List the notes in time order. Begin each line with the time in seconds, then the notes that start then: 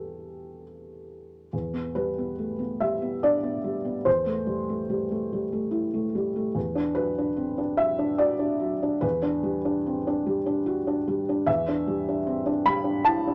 Already playing: E2 G3 B3 D4 G4 A4
1.53 E2
1.73 B3
1.95 G3 B4
2.18 B3
2.38 A3
2.59 B3
2.80 G3 E5
3.02 B3
3.23 D4 D5
3.43 B3
3.64 G3
3.85 B3
4.05 E2 C5
4.26 A3
4.46 G3
4.69 A3
4.90 G3
5.11 A3
5.33 G3
5.52 A3
5.71 E4
5.94 A3
6.15 G3
6.36 A3
6.55 E2
6.75 D4
6.95 F#3 B4
7.18 D4
7.36 C4
7.58 D4
7.77 F#3 E5
7.98 D4
8.18 F#4 D5
8.39 D4
8.60 F#3
8.83 D4
9.01 E2 B4
9.22 D4
9.43 G3
9.65 D4
9.86 C4
10.07 D4
10.26 G3
10.46 D4
10.66 F#4
10.87 D4
11.08 G3
11.29 D4
11.46 E2 E5
11.68 D4
11.87 G3
12.08 D4
12.27 C4
12.46 D4
12.66 G3 B5
12.84 D4
13.05 E4 A5
13.27 D4